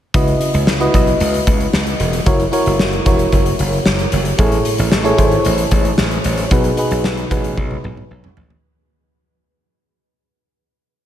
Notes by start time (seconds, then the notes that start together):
0.14 C#2 C#3 E4 F#4 B4 D#5, kick, closed hi-hat
0.28 closed hi-hat
0.41 closed hi-hat
0.54 C#2, closed hi-hat
0.67 C#2, snare
0.80 E4 F#4 B4 D#5, closed hi-hat
0.94 B1 E4 F#4 B4 D#5, kick, closed hi-hat
1.07 closed hi-hat
1.20 C#2, closed hi-hat
1.34 closed hi-hat
1.47 C#2, kick, closed hi-hat
1.60 closed hi-hat
1.73 C#2, snare
1.87 closed hi-hat
2.00 E1, closed hi-hat
2.13 closed hi-hat
2.26 F#1 E4 F#4 A#4 C#5, kick, closed hi-hat
2.40 closed hi-hat
2.52 E4 F#4 A#4 C#5, closed hi-hat
2.66 F#1, closed hi-hat
2.79 F#1, snare
2.93 closed hi-hat
3.05 E1 E4 F#4 A#4 C#5, kick, closed hi-hat
3.19 closed hi-hat
3.32 F#1, kick, closed hi-hat
3.46 closed hi-hat
3.59 F#1, closed hi-hat
3.73 closed hi-hat
3.86 F#1, snare
3.99 closed hi-hat
4.12 F#1, closed hi-hat
4.25 closed hi-hat
4.38 A1 A2 E4 G#4 A4 C#5, kick, closed hi-hat
4.52 closed hi-hat
4.65 closed hi-hat
4.78 A1, closed hi-hat
4.92 A1, snare
5.04 E4 G#4 A4 C#5, closed hi-hat
5.17 G#1 E4 G#4 A4 C5, kick, closed hi-hat
5.25 C#5
5.32 closed hi-hat
5.45 A1, closed hi-hat
5.58 closed hi-hat
5.71 A1, kick, closed hi-hat
5.85 closed hi-hat
5.98 A1, snare
6.11 closed hi-hat
6.24 A1, closed hi-hat
6.38 closed hi-hat
6.51 B1 B2 D#4 F#4 G#4 B4, kick, closed hi-hat
6.64 closed hi-hat
6.77 D#4 F#4 G#4 B4, closed hi-hat
6.91 B1, closed hi-hat
7.04 B1, snare
7.17 closed hi-hat
7.31 A1 D#4 F#4 G#4 B4, kick, closed hi-hat
7.44 closed hi-hat
7.58 B1, kick, high tom
7.71 high tom
7.84 B1, mid tom
7.97 mid tom
8.11 B1
8.24 mid tom
8.37 A1, floor tom
8.50 floor tom